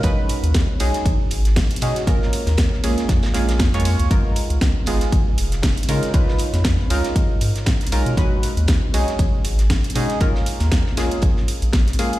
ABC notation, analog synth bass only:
X:1
M:4/4
L:1/16
Q:"Swing 16ths" 1/4=118
K:Blyd
V:1 name="Analog synth bass" clef=bass
B,,, z2 D,, D,, z B,,, z B,,, z G,,,2 B,,, z B,, z | A,,, z2 D,, D,, z A,,, z E,, z A,,,2 E,,3 C,, | G,,, z2 C,, C,, z G,,, z G,,, z E,,,2 G,,, z C, z | C,, z2 E,, E,, z C,, z3 G,, z3 B,,, B,, |
B,,, z2 D,, D,, z B,,, z B,,, z G,,,2 B,,, z B,, z | A,,, z2 D,, D,, z A,,, z4 A,,,3 z2 |]